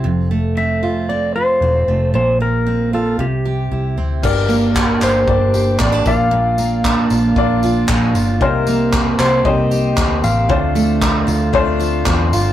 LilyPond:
<<
  \new Staff \with { instrumentName = "Electric slide guitar" } { \time 4/4 \key g \dorian \tempo 4 = 115 r4 e''4 d''8 c''4. | c''8 bes'4 a'8 g'4. r8 | bes'4. c''4. d''8 f''8~ | f''2~ f''8 r4. |
bes'4. c''8 ees''4. f''8~ | f''2. r4 | }
  \new Staff \with { instrumentName = "Upright piano" } { \time 4/4 \key g \dorian r1 | r1 | <bes d' g' d''>4~ <bes d' g' d''>16 r8. <bes d' g' d''>4~ <bes d' g' d''>16 r16 <bes d' f' d''>8~ | <bes d' f' d''>4 r4 <bes d' f' d''>4~ <bes d' f' d''>16 r8. |
<bes ees' g' c''>4~ <bes ees' g' c''>16 r8. <bes ees' g' c''>4~ <bes ees' g' c''>16 r8. | <a d' f' c''>4~ <a d' f' c''>16 r8. <a d' f' c''>4~ <a d' f' c''>16 r8. | }
  \new Staff \with { instrumentName = "Steel-string acoustic guitar" } { \time 4/4 \key g \dorian f,8 a8 c'8 f'8 c'8 f'8 c'8 a8 | bes,8 bes8 c'8 f'8 c8 g'8 e'8 c'8 | g,8 bes8 d'8 g'8 d'8 g'8 c'16 d'16 bes,8 | bes,8 bes8 d'8 f'8 d'8 f'8 d'8 f'8 |
c8 bes8 c'8 g'8 c'8 g'8 c'8 g'8 | d8 a8 c'8 f'8 c'8 f'8 c'8 f'8 | }
  \new Staff \with { instrumentName = "Fingered electric bass" } { \clef bass \time 4/4 \key g \dorian f,,2. e,,8 f,,8 | bes,,2 c,4 c,8 d,8 | g,,4. g,,8 g,,4 a,,8 bes,,8~ | bes,,4. bes,,8 bes,,4 bes,,8 g,,8 |
c,4. c,8 c,4 d,8 a,,8 | d,4. d,8 d,4 e,8 g,,8 | }
  \new DrumStaff \with { instrumentName = "Drums" } \drummode { \time 4/4 r4 r4 r4 r4 | r4 r4 r4 r4 | <cymc bd>8 tamb8 <hc bd>8 <hc tamb>8 bd8 tamb8 <hc bd>8 <bd tamb>8 | r8 tamb8 <hc bd>8 tamb8 bd8 tamb8 <hc bd>8 tamb8 |
bd8 tamb8 <hc bd>8 <hc tamb>8 bd8 tamb8 <hc bd>8 tamb8 | bd8 tamb8 <hc bd>8 tamb8 bd8 tamb8 <hc bd>8 tamb8 | }
>>